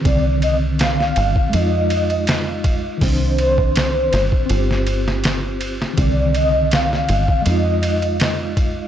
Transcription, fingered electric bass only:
\new Staff \with { instrumentName = "Fingered electric bass" } { \clef bass \time 4/4 \key c \minor \tempo 4 = 81 c,4. g,,8 f,2 | c,4. g,,8 g,,2 | c,4. g,,8 f,2 | }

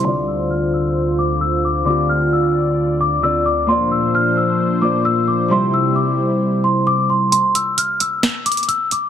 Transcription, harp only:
\new Staff \with { instrumentName = "Harp" } { \time 4/4 \key d \minor \tempo 4 = 132 <d c' f' d''>1 | <d c' f' g'>2. <d c' f' d''>4 | <bes f' c'' d''>2~ <bes f' c'' d''>8 <bes f' c'' d''>4. | <c g e' c''>1 |
r1 | }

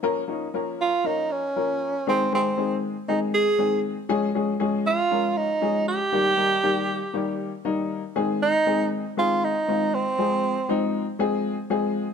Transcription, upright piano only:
\new Staff \with { instrumentName = "Upright piano" } { \time 4/4 \key aes \major \tempo 4 = 118 <f bes des' bes'>8 <f bes des' ees'>8 <f bes des' bes'>8 r8 <f bes des' bes'>8 r8 <f bes des' bes'>8 r8 | <ees aes c' aes'>8 <ees aes c' aes'>8 <ees aes c' aes'>8 r8 <ees aes c' aes'>8 r8 <ees aes c' aes'>8 r8 | <f aes des' aes'>8 <f aes des' aes'>8 <f aes des' aes'>8 r8 <f aes des' bes'>8 r8 <f aes des' aes'>8 r8 | <ees g bes g'>8 <ees g bes ees'>8 <ees g bes g'>8 r8 <ees g bes g'>8 r8 <ees g bes ees'>8 r8 |
<ees aes c' aes'>8 r8 <ees aes c' aes'>8 r8 <ees aes c' aes'>8 r8 <ees aes c' f'>8 r8 | <f aes c' aes'>8 r8 <f aes c' ees'>8 r8 <f aes c' aes'>8 r8 <f aes c' aes'>8 r8 | }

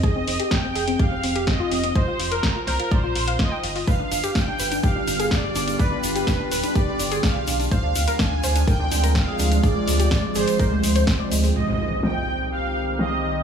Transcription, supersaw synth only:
\new Staff \with { instrumentName = "Supersaw synth" } { \time 4/4 \key c \minor \tempo 4 = 125 ees''4 g''4 f''4 ees''4 | c''8. bes'8. bes'8 c''4 ees''8. r16 | f''4 g''4 f''4 d''4 | b'8. b'8. b'8 d''4 f''8. r16 |
f''4 aes''4 g''4 f''4 | d''4. c''2 r8 | ees''4 g''4 f''4 ees''4 | }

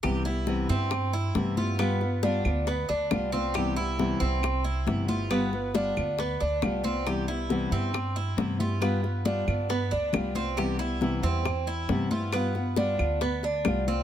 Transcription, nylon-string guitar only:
\new Staff \with { instrumentName = "Nylon-string guitar" } { \time 4/4 \key c \major \tempo 4 = 136 <c e g b e'>8 <g b e'>8 <c e g b e'>8 <g b e'>8 r4 <c e g b e'>8 <g b e'>8 | <g b f'>8 <b f'>8 <g b f'>8 <b f'>8 r4 <g b f'>8 <b f'>8 | <c e g b e'>8 <g b e'>8 <c e g b e'>8 <g b e'>8 r4 <c e g b e'>8 <g b e'>8 | <g b f'>8 <b f'>8 <g b f'>8 <b f'>8 r4 <g b f'>8 <b f'>8 |
<c e g b e'>8 <g b e'>8 <c e g b e'>8 <g b e'>8 r4 <c e g b e'>8 <g b e'>8 | <g b f'>8 <b f'>8 <g b f'>8 <b f'>8 r4 <g b f'>8 <b f'>8 | <c e g b e'>8 <g b e'>8 <c e g b e'>8 <g b e'>8 r4 <c e g b e'>8 <g b e'>8 | <g b f'>8 <b f'>8 <g b f'>8 <b f'>8 r4 <g b f'>8 <b f'>8 | }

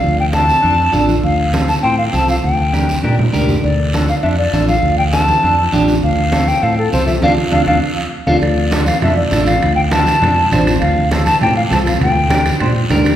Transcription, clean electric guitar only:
\new Staff \with { instrumentName = "Clean electric guitar" } { \time 4/4 \key d \minor \tempo 4 = 200 r4 <d' f' a'>8 r8 <d' f' a'>8 r8 <d' f' a'>8 r8 | r4 <c' f' a'>8 r8 <c' f' c''>8 r8 <c' f' a'>8 r8 | r4 <d' g' bes'>8 r8 <d' g' bes'>8 r8 <d' g' bes'>8 r8 | r4 <d' f' a'>8 r8 <d' f' a'>8 r8 <d' f' a'>8 r8 |
r4 <d' f' a'>8 r8 <d' f' a'>8 r8 <d' f' g'>8 r8 | r4 <c' f' a'>8 r8 <c' f' a'>8 r8 <c' f' a'>8 r8 | <d' f' a'>8 r8 <d' f' a'>8 <d' f' a'>8 r4. <d' f' a'>8 | r4 <d' f' a'>8 r8 <d' f' a'>8 r8 <d' f' a'>8 r8 |
r4 <d' f' a'>8 r8 <d' f' a'>8 r8 <d' f' c''>8 r8 | r4 <c' f' a'>8 r8 <c' f' g'>8 r8 <c' f' a'>8 r8 | r4 <d' g' bes'>8 r8 <d' g' c''>8 r8 <d' g' bes'>8 r8 | }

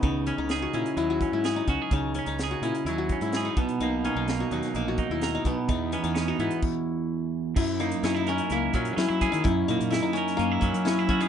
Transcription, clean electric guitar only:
\new Staff \with { instrumentName = "Clean electric guitar" } { \time 4/4 \key fis \mixolydian \tempo 4 = 128 << { r8 cis'8 gis'8 cis'4 cis'8 gis'8 fis'16 gis'16 | r8 cis'8 gis'8 cis'4 cis'8 gis'8 r8 | ais8 dis'8 ais4 ais8 dis'8 ais'8 r8 | r8 b8 cis'16 dis'16 b8 r2 |
r8 ais8 cis'16 e'16 ais'8 e'4 cis'16 e'16 gis'8 | r8 ais8 e'8 ais'8 cis'16 e'8. cis'16 e'16 fis'16 gis'16 | } \\ { <cis e>2 fis2 | cis2 fis4. b,8~ | b,4. fis2 b,8 | e,1 |
fis,2~ fis,8 fis4. | fis,2~ fis,8 fis4. | } >> }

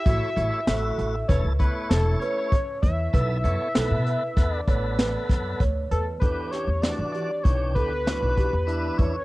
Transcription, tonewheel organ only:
\new Staff \with { instrumentName = "Tonewheel organ" } { \time 5/4 \key e \dorian \tempo 4 = 97 <a e' cis''>8 <a e' cis''>8 <a e' fis'>4 <a e' a'>8 <a e' cis''>4. r4 | <b a' e''>8 <b a' cis''>8 <b a' b'>4 <b a' b'>8 <b a' b'>4. r4 | <e d' g'>4 <e d' fis'>4 <e d' g'>4 <e d' fis'>4 <e d' e'>4 | }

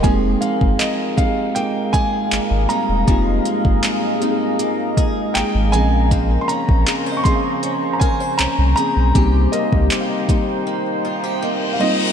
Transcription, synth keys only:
\new Staff \with { instrumentName = "Synth keys" } { \time 4/4 \key f \minor \tempo 4 = 79 << { r1 | r1 | r1 | r2 r8 g''8 ees''4 | } \\ { <aes bes c' ees' g' aes'>4 r8 <aes bes c' ees' g' aes'>4. r8 <g bes c' ees' aes'>8 | <bes c' ees' f' g'>4 r8 <bes c' ees' g' aes'>4. r8 <f bes c' des' aes'>8~ | <f bes c' des' aes'>4 r8 <f bes c' des' aes'>4. r8 <f bes c' des' aes'>8 | <g bes c' ees' g'>4 r8 <g bes c' ees' g'>4. r8 <g bes c' ees' f'>8 | } >> }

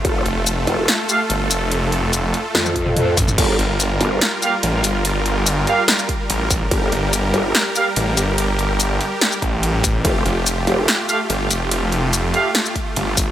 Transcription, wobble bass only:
\new Staff \with { instrumentName = "Wobble bass" } { \clef bass \time 4/4 \key g \minor \tempo 4 = 144 f,,8 r4 f,,8 r2 | r2 f,4. r8 | g,,8 r4 g,,8 r2 | r1 |
g,,8 r4 g,,8 r2 | r1 | f,,8 r4 f,,8 r2 | r1 | }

